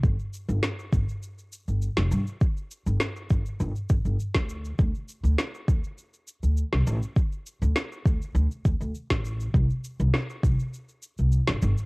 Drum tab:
SH |xxxxxxxxxxxxxxxx|xxxxxxxxxxxxxxxx|xxxxxxxxxxxxxxxx|xxxxxxxxxxxxxxxx|
SD |----o--------o--|----o--------o--|----o--------o--|----o--------o--|
BD |o-----o---------|o-----o---o--o--|o-----o---------|o-----o---o--o--|

SH |xxxxxxxxxxxxxxxx|
SD |----o--------o--|
BD |o-----o---------|